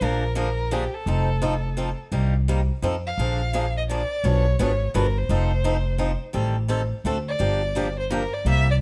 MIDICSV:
0, 0, Header, 1, 4, 480
1, 0, Start_track
1, 0, Tempo, 351494
1, 25, Time_signature, 3, 2, 24, 8
1, 12035, End_track
2, 0, Start_track
2, 0, Title_t, "Violin"
2, 0, Program_c, 0, 40
2, 42, Note_on_c, 0, 70, 78
2, 501, Note_off_c, 0, 70, 0
2, 509, Note_on_c, 0, 70, 79
2, 998, Note_on_c, 0, 67, 65
2, 1018, Note_off_c, 0, 70, 0
2, 1286, Note_on_c, 0, 69, 69
2, 1306, Note_off_c, 0, 67, 0
2, 2725, Note_off_c, 0, 69, 0
2, 4190, Note_on_c, 0, 77, 90
2, 5082, Note_off_c, 0, 77, 0
2, 5153, Note_on_c, 0, 75, 74
2, 5228, Note_off_c, 0, 75, 0
2, 5316, Note_on_c, 0, 74, 81
2, 5801, Note_on_c, 0, 73, 87
2, 5822, Note_off_c, 0, 74, 0
2, 6274, Note_off_c, 0, 73, 0
2, 6307, Note_on_c, 0, 73, 76
2, 6734, Note_off_c, 0, 73, 0
2, 6784, Note_on_c, 0, 70, 76
2, 7075, Note_on_c, 0, 72, 76
2, 7096, Note_off_c, 0, 70, 0
2, 8499, Note_off_c, 0, 72, 0
2, 9948, Note_on_c, 0, 74, 82
2, 10839, Note_off_c, 0, 74, 0
2, 10915, Note_on_c, 0, 72, 80
2, 11068, Note_off_c, 0, 72, 0
2, 11095, Note_on_c, 0, 70, 83
2, 11381, Note_on_c, 0, 74, 85
2, 11401, Note_off_c, 0, 70, 0
2, 11552, Note_off_c, 0, 74, 0
2, 11590, Note_on_c, 0, 76, 111
2, 11845, Note_off_c, 0, 76, 0
2, 11895, Note_on_c, 0, 74, 84
2, 11965, Note_off_c, 0, 74, 0
2, 12035, End_track
3, 0, Start_track
3, 0, Title_t, "Steel-string acoustic guitar"
3, 0, Program_c, 1, 25
3, 14, Note_on_c, 1, 50, 66
3, 24, Note_on_c, 1, 53, 66
3, 27, Note_on_c, 1, 62, 73
3, 28, Note_on_c, 1, 58, 63
3, 33, Note_on_c, 1, 68, 70
3, 308, Note_off_c, 1, 50, 0
3, 313, Note_off_c, 1, 53, 0
3, 315, Note_off_c, 1, 58, 0
3, 315, Note_off_c, 1, 62, 0
3, 318, Note_off_c, 1, 68, 0
3, 482, Note_on_c, 1, 50, 75
3, 486, Note_on_c, 1, 53, 82
3, 492, Note_on_c, 1, 58, 75
3, 498, Note_on_c, 1, 68, 78
3, 502, Note_on_c, 1, 62, 79
3, 646, Note_off_c, 1, 50, 0
3, 649, Note_off_c, 1, 53, 0
3, 652, Note_off_c, 1, 58, 0
3, 654, Note_off_c, 1, 68, 0
3, 656, Note_off_c, 1, 62, 0
3, 973, Note_on_c, 1, 50, 75
3, 976, Note_on_c, 1, 53, 81
3, 979, Note_on_c, 1, 62, 68
3, 985, Note_on_c, 1, 58, 81
3, 994, Note_on_c, 1, 68, 84
3, 1132, Note_off_c, 1, 50, 0
3, 1134, Note_off_c, 1, 53, 0
3, 1135, Note_off_c, 1, 62, 0
3, 1138, Note_off_c, 1, 58, 0
3, 1143, Note_off_c, 1, 68, 0
3, 1459, Note_on_c, 1, 53, 63
3, 1466, Note_on_c, 1, 60, 59
3, 1470, Note_on_c, 1, 63, 65
3, 1480, Note_on_c, 1, 69, 74
3, 1751, Note_off_c, 1, 53, 0
3, 1755, Note_off_c, 1, 60, 0
3, 1757, Note_off_c, 1, 63, 0
3, 1762, Note_off_c, 1, 69, 0
3, 1934, Note_on_c, 1, 60, 77
3, 1935, Note_on_c, 1, 53, 85
3, 1945, Note_on_c, 1, 63, 85
3, 1945, Note_on_c, 1, 69, 85
3, 2093, Note_off_c, 1, 53, 0
3, 2093, Note_off_c, 1, 60, 0
3, 2099, Note_off_c, 1, 63, 0
3, 2099, Note_off_c, 1, 69, 0
3, 2415, Note_on_c, 1, 53, 72
3, 2421, Note_on_c, 1, 60, 79
3, 2424, Note_on_c, 1, 63, 79
3, 2433, Note_on_c, 1, 69, 78
3, 2573, Note_off_c, 1, 53, 0
3, 2576, Note_off_c, 1, 60, 0
3, 2578, Note_off_c, 1, 63, 0
3, 2582, Note_off_c, 1, 69, 0
3, 2889, Note_on_c, 1, 48, 56
3, 2894, Note_on_c, 1, 58, 74
3, 2896, Note_on_c, 1, 63, 72
3, 2897, Note_on_c, 1, 55, 66
3, 2905, Note_on_c, 1, 67, 71
3, 3186, Note_off_c, 1, 48, 0
3, 3189, Note_off_c, 1, 58, 0
3, 3190, Note_off_c, 1, 55, 0
3, 3190, Note_off_c, 1, 63, 0
3, 3195, Note_off_c, 1, 67, 0
3, 3389, Note_on_c, 1, 48, 65
3, 3389, Note_on_c, 1, 55, 78
3, 3402, Note_on_c, 1, 58, 78
3, 3404, Note_on_c, 1, 63, 78
3, 3405, Note_on_c, 1, 67, 81
3, 3540, Note_off_c, 1, 55, 0
3, 3541, Note_off_c, 1, 48, 0
3, 3547, Note_off_c, 1, 58, 0
3, 3548, Note_off_c, 1, 63, 0
3, 3549, Note_off_c, 1, 67, 0
3, 3856, Note_on_c, 1, 53, 66
3, 3869, Note_on_c, 1, 60, 81
3, 3871, Note_on_c, 1, 63, 78
3, 3880, Note_on_c, 1, 69, 82
3, 4014, Note_off_c, 1, 53, 0
3, 4021, Note_off_c, 1, 60, 0
3, 4022, Note_off_c, 1, 63, 0
3, 4026, Note_off_c, 1, 69, 0
3, 4359, Note_on_c, 1, 53, 64
3, 4360, Note_on_c, 1, 50, 59
3, 4363, Note_on_c, 1, 62, 62
3, 4365, Note_on_c, 1, 58, 62
3, 4367, Note_on_c, 1, 68, 72
3, 4641, Note_off_c, 1, 53, 0
3, 4642, Note_off_c, 1, 50, 0
3, 4644, Note_off_c, 1, 62, 0
3, 4645, Note_off_c, 1, 58, 0
3, 4646, Note_off_c, 1, 68, 0
3, 4824, Note_on_c, 1, 50, 70
3, 4832, Note_on_c, 1, 58, 81
3, 4834, Note_on_c, 1, 53, 78
3, 4839, Note_on_c, 1, 62, 80
3, 4844, Note_on_c, 1, 68, 73
3, 4978, Note_off_c, 1, 50, 0
3, 4982, Note_off_c, 1, 58, 0
3, 4983, Note_off_c, 1, 53, 0
3, 4986, Note_off_c, 1, 62, 0
3, 4988, Note_off_c, 1, 68, 0
3, 5318, Note_on_c, 1, 50, 70
3, 5327, Note_on_c, 1, 53, 73
3, 5332, Note_on_c, 1, 58, 73
3, 5335, Note_on_c, 1, 62, 79
3, 5339, Note_on_c, 1, 68, 83
3, 5465, Note_off_c, 1, 50, 0
3, 5470, Note_off_c, 1, 53, 0
3, 5472, Note_off_c, 1, 58, 0
3, 5474, Note_off_c, 1, 62, 0
3, 5476, Note_off_c, 1, 68, 0
3, 5789, Note_on_c, 1, 47, 54
3, 5790, Note_on_c, 1, 59, 72
3, 5794, Note_on_c, 1, 53, 61
3, 5795, Note_on_c, 1, 68, 70
3, 5800, Note_on_c, 1, 62, 74
3, 5803, Note_on_c, 1, 71, 65
3, 6076, Note_off_c, 1, 47, 0
3, 6077, Note_off_c, 1, 59, 0
3, 6079, Note_off_c, 1, 53, 0
3, 6080, Note_off_c, 1, 68, 0
3, 6082, Note_off_c, 1, 62, 0
3, 6083, Note_off_c, 1, 71, 0
3, 6270, Note_on_c, 1, 47, 75
3, 6274, Note_on_c, 1, 59, 85
3, 6283, Note_on_c, 1, 53, 77
3, 6283, Note_on_c, 1, 62, 83
3, 6289, Note_on_c, 1, 71, 78
3, 6290, Note_on_c, 1, 68, 83
3, 6421, Note_off_c, 1, 47, 0
3, 6423, Note_off_c, 1, 59, 0
3, 6427, Note_off_c, 1, 53, 0
3, 6428, Note_off_c, 1, 62, 0
3, 6430, Note_off_c, 1, 71, 0
3, 6431, Note_off_c, 1, 68, 0
3, 6749, Note_on_c, 1, 47, 80
3, 6757, Note_on_c, 1, 53, 81
3, 6757, Note_on_c, 1, 59, 81
3, 6758, Note_on_c, 1, 68, 71
3, 6760, Note_on_c, 1, 62, 79
3, 6766, Note_on_c, 1, 71, 91
3, 6900, Note_off_c, 1, 47, 0
3, 6904, Note_off_c, 1, 53, 0
3, 6904, Note_off_c, 1, 59, 0
3, 6905, Note_off_c, 1, 68, 0
3, 6906, Note_off_c, 1, 62, 0
3, 6909, Note_off_c, 1, 71, 0
3, 7229, Note_on_c, 1, 53, 74
3, 7238, Note_on_c, 1, 60, 71
3, 7241, Note_on_c, 1, 63, 69
3, 7247, Note_on_c, 1, 69, 78
3, 7516, Note_off_c, 1, 53, 0
3, 7521, Note_off_c, 1, 60, 0
3, 7522, Note_off_c, 1, 63, 0
3, 7525, Note_off_c, 1, 69, 0
3, 7705, Note_on_c, 1, 53, 71
3, 7711, Note_on_c, 1, 60, 84
3, 7713, Note_on_c, 1, 63, 87
3, 7717, Note_on_c, 1, 69, 93
3, 7858, Note_off_c, 1, 53, 0
3, 7861, Note_off_c, 1, 60, 0
3, 7862, Note_off_c, 1, 63, 0
3, 7864, Note_off_c, 1, 69, 0
3, 8171, Note_on_c, 1, 53, 67
3, 8172, Note_on_c, 1, 60, 73
3, 8181, Note_on_c, 1, 63, 80
3, 8185, Note_on_c, 1, 69, 76
3, 8331, Note_off_c, 1, 53, 0
3, 8332, Note_off_c, 1, 60, 0
3, 8336, Note_off_c, 1, 63, 0
3, 8338, Note_off_c, 1, 69, 0
3, 8645, Note_on_c, 1, 51, 67
3, 8653, Note_on_c, 1, 55, 67
3, 8655, Note_on_c, 1, 60, 67
3, 8656, Note_on_c, 1, 67, 71
3, 8666, Note_on_c, 1, 69, 71
3, 8944, Note_off_c, 1, 51, 0
3, 8948, Note_off_c, 1, 55, 0
3, 8949, Note_off_c, 1, 60, 0
3, 8949, Note_off_c, 1, 67, 0
3, 8954, Note_off_c, 1, 69, 0
3, 9128, Note_on_c, 1, 51, 74
3, 9135, Note_on_c, 1, 55, 87
3, 9141, Note_on_c, 1, 60, 75
3, 9143, Note_on_c, 1, 67, 84
3, 9145, Note_on_c, 1, 69, 85
3, 9289, Note_off_c, 1, 51, 0
3, 9293, Note_off_c, 1, 55, 0
3, 9295, Note_off_c, 1, 60, 0
3, 9297, Note_off_c, 1, 67, 0
3, 9298, Note_off_c, 1, 69, 0
3, 9624, Note_on_c, 1, 50, 63
3, 9636, Note_on_c, 1, 57, 68
3, 9638, Note_on_c, 1, 60, 75
3, 9646, Note_on_c, 1, 66, 70
3, 9648, Note_on_c, 1, 69, 80
3, 9777, Note_off_c, 1, 50, 0
3, 9783, Note_off_c, 1, 57, 0
3, 9784, Note_off_c, 1, 60, 0
3, 9788, Note_off_c, 1, 66, 0
3, 9789, Note_off_c, 1, 69, 0
3, 10089, Note_on_c, 1, 50, 60
3, 10098, Note_on_c, 1, 53, 68
3, 10098, Note_on_c, 1, 62, 58
3, 10101, Note_on_c, 1, 58, 68
3, 10106, Note_on_c, 1, 67, 76
3, 10385, Note_off_c, 1, 50, 0
3, 10389, Note_off_c, 1, 53, 0
3, 10389, Note_off_c, 1, 62, 0
3, 10391, Note_off_c, 1, 58, 0
3, 10393, Note_off_c, 1, 67, 0
3, 10585, Note_on_c, 1, 50, 70
3, 10595, Note_on_c, 1, 53, 75
3, 10598, Note_on_c, 1, 62, 71
3, 10602, Note_on_c, 1, 58, 76
3, 10608, Note_on_c, 1, 67, 86
3, 10737, Note_off_c, 1, 50, 0
3, 10742, Note_off_c, 1, 53, 0
3, 10743, Note_off_c, 1, 62, 0
3, 10745, Note_off_c, 1, 58, 0
3, 10749, Note_off_c, 1, 67, 0
3, 11068, Note_on_c, 1, 53, 76
3, 11069, Note_on_c, 1, 50, 77
3, 11083, Note_on_c, 1, 58, 80
3, 11086, Note_on_c, 1, 62, 67
3, 11086, Note_on_c, 1, 67, 80
3, 11218, Note_off_c, 1, 53, 0
3, 11219, Note_off_c, 1, 50, 0
3, 11226, Note_off_c, 1, 58, 0
3, 11227, Note_off_c, 1, 62, 0
3, 11227, Note_off_c, 1, 67, 0
3, 11551, Note_on_c, 1, 48, 61
3, 11554, Note_on_c, 1, 55, 69
3, 11557, Note_on_c, 1, 58, 75
3, 11563, Note_on_c, 1, 64, 73
3, 11572, Note_on_c, 1, 67, 69
3, 11835, Note_off_c, 1, 48, 0
3, 11836, Note_off_c, 1, 55, 0
3, 11838, Note_off_c, 1, 58, 0
3, 11841, Note_off_c, 1, 64, 0
3, 11845, Note_off_c, 1, 67, 0
3, 12035, End_track
4, 0, Start_track
4, 0, Title_t, "Upright bass"
4, 0, Program_c, 2, 32
4, 14, Note_on_c, 2, 34, 79
4, 1171, Note_off_c, 2, 34, 0
4, 1450, Note_on_c, 2, 29, 88
4, 2608, Note_off_c, 2, 29, 0
4, 2889, Note_on_c, 2, 36, 82
4, 3664, Note_off_c, 2, 36, 0
4, 3857, Note_on_c, 2, 41, 71
4, 4245, Note_off_c, 2, 41, 0
4, 4336, Note_on_c, 2, 34, 82
4, 5492, Note_off_c, 2, 34, 0
4, 5784, Note_on_c, 2, 35, 89
4, 6169, Note_off_c, 2, 35, 0
4, 6265, Note_on_c, 2, 32, 78
4, 6674, Note_off_c, 2, 32, 0
4, 6753, Note_on_c, 2, 31, 85
4, 7158, Note_off_c, 2, 31, 0
4, 7225, Note_on_c, 2, 29, 87
4, 8377, Note_off_c, 2, 29, 0
4, 8662, Note_on_c, 2, 33, 84
4, 9430, Note_off_c, 2, 33, 0
4, 9616, Note_on_c, 2, 38, 72
4, 10003, Note_off_c, 2, 38, 0
4, 10101, Note_on_c, 2, 31, 82
4, 11253, Note_off_c, 2, 31, 0
4, 11537, Note_on_c, 2, 36, 94
4, 12035, Note_off_c, 2, 36, 0
4, 12035, End_track
0, 0, End_of_file